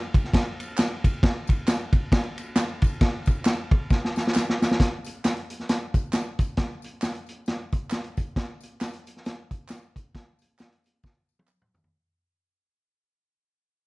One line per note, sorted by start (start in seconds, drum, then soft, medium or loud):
0.14 kick loud
0.14 ride medium
0.14 tambourine soft
0.24 snare soft
0.33 kick loud
0.33 snare loud
0.33 ride medium
0.33 tambourine medium
0.60 ride medium
0.60 tambourine medium
0.78 snare loud
0.78 clap medium
0.78 ride medium
0.78 tambourine loud
1.04 kick medium
1.04 ride medium
1.04 tambourine medium
1.23 kick loud
1.23 snare loud
1.23 ride medium
1.23 tambourine soft
1.47 kick medium
1.47 ride medium
1.47 tambourine medium
1.67 snare loud
1.67 clap medium
1.67 ride medium
1.67 tambourine medium
1.93 kick loud
1.93 ride medium
1.93 tambourine soft
2.12 kick loud
2.12 snare loud
2.12 ride medium
2.12 tambourine soft
2.38 ride medium
2.38 tambourine medium
2.56 snare loud
2.56 clap loud
2.56 ride medium
2.56 tambourine loud
2.82 kick loud
2.82 ride medium
2.82 tambourine medium
3.01 kick loud
3.01 snare loud
3.01 ride medium
3.01 tambourine soft
3.26 kick medium
3.26 ride medium
3.26 tambourine medium
3.45 snare loud
3.45 clap medium
3.45 ride medium
3.45 tambourine medium
3.71 kick loud
3.71 ride medium
3.90 kick loud
3.90 snare medium
3.90 tambourine medium
4.05 snare medium
4.16 snare medium
4.16 tambourine medium
4.27 snare medium
4.34 snare loud
4.34 clap loud
4.34 tambourine medium
4.49 snare medium
4.62 snare medium
4.62 tambourine medium
4.71 snare medium
4.80 kick loud
4.80 snare loud
4.80 closed hi-hat loud
5.05 closed hi-hat medium
5.05 tambourine medium
5.24 snare loud
5.24 clap medium
5.24 closed hi-hat medium
5.24 tambourine medium
5.36 closed hi-hat soft
5.50 closed hi-hat medium
5.50 tambourine soft
5.59 snare soft
5.69 snare loud
5.69 closed hi-hat loud
5.69 tambourine medium
5.94 kick loud
5.94 closed hi-hat medium
5.94 tambourine medium
6.13 snare loud
6.13 clap medium
6.13 closed hi-hat medium
6.13 tambourine loud
6.39 kick loud
6.39 closed hi-hat medium
6.39 tambourine medium
6.57 kick loud
6.57 snare loud
6.57 closed hi-hat loud
6.82 closed hi-hat medium
6.82 tambourine medium
7.02 snare loud
7.02 clap medium
7.02 closed hi-hat medium
7.02 tambourine medium
7.15 closed hi-hat medium
7.27 closed hi-hat medium
7.27 tambourine soft
7.46 snare loud
7.46 closed hi-hat medium
7.46 tambourine soft
7.72 kick loud
7.72 closed hi-hat medium
7.72 tambourine medium
7.90 snare loud
7.90 clap loud
7.90 closed hi-hat medium
7.90 tambourine medium
8.04 closed hi-hat soft
8.17 kick medium
8.17 closed hi-hat medium
8.17 tambourine medium
8.36 kick loud
8.36 snare loud
8.36 closed hi-hat medium
8.36 tambourine soft
8.61 closed hi-hat medium
8.61 tambourine medium
8.80 snare loud
8.80 clap medium
8.80 closed hi-hat medium
8.80 tambourine medium
8.93 closed hi-hat medium
9.07 closed hi-hat medium
9.07 tambourine soft
9.17 snare soft
9.25 snare loud
9.25 closed hi-hat medium
9.25 tambourine medium
9.51 kick medium
9.51 closed hi-hat medium
9.51 tambourine medium
9.69 snare loud
9.69 clap loud
9.69 closed hi-hat medium
9.69 tambourine loud
9.96 kick medium
9.96 closed hi-hat medium
9.96 tambourine medium
10.15 kick loud
10.15 snare loud
10.15 closed hi-hat medium
10.39 closed hi-hat medium
10.39 tambourine medium
10.59 snare loud
10.59 clap medium
10.59 closed hi-hat medium
10.59 tambourine medium
10.72 closed hi-hat soft
10.84 closed hi-hat medium
10.84 tambourine soft
11.03 kick loud
11.03 snare medium
11.03 tambourine soft
11.29 tambourine soft
11.39 high tom medium
11.48 clap medium
11.48 tambourine medium
11.62 mid tom medium
11.74 floor tom medium
11.74 tambourine medium
11.84 floor tom medium